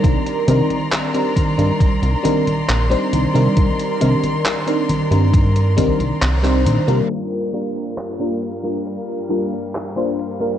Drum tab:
HH |xxxxxxxxxxxxxxxx|xxxxxxxxxxxxxxxx|xxxxxxxxxxxxxxxx|
CP |----x-------x---|----x-------xx--|----x-------x---|
CG |o-ooo-ooo-ooo-oo|o-ooo-ooo-ooo-oo|----------------|
BD |o-----o-o-------|o-------o-o-----|----------------|